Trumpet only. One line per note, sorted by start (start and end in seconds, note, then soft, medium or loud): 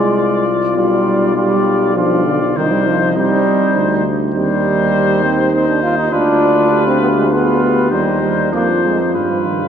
0.00 0.74 D5 soft
0.76 1.35 D5 soft
1.36 1.95 D5 soft
1.96 2.58 D5 soft
2.56 3.16 C5 medium
3.17 4.07 C5 medium
4.34 5.49 C5 medium
5.53 6.14 C5 soft
6.13 7.30 B4 medium
7.31 7.92 B4 soft
7.91 8.52 C5 soft
8.53 9.13 C5 soft
9.14 9.68 B4 soft